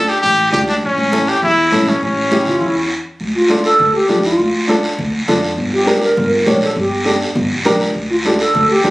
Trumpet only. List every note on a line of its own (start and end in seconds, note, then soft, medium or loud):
0.00 0.10 A4 loud
0.09 0.21 G4 medium
0.22 0.50 G4 loud
0.52 0.59 G4 medium
0.69 0.75 D4 medium
0.85 1.31 C#4 medium
1.29 1.43 G4 medium
1.43 1.91 E4 medium
1.89 2.03 C#4 medium
2.04 2.88 C#4 medium